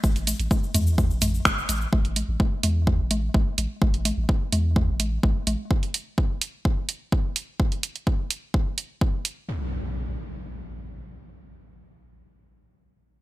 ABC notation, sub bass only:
X:1
M:4/4
L:1/16
Q:1/4=127
K:Cmix
V:1 name="Sub bass" clef=bass
A,,,3 A,,, z2 E,,3 A,,,3 G,,, z A,,, z | A,,,3 A,,, z2 E,,3 A,,,3 A,,, z A,,, z | A,,,3 A,,, z2 E,,3 A,,,3 A,,, z A,,, z | z16 |
z16 | z16 | z16 |]